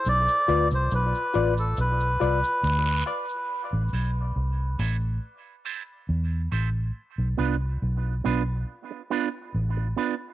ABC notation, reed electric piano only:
X:1
M:4/4
L:1/8
Q:1/4=70
K:Am
V:1 name="Reed electric piano"
z [FBd] z [FBd] z [FBd] z [FBd] | z8 | z8 |]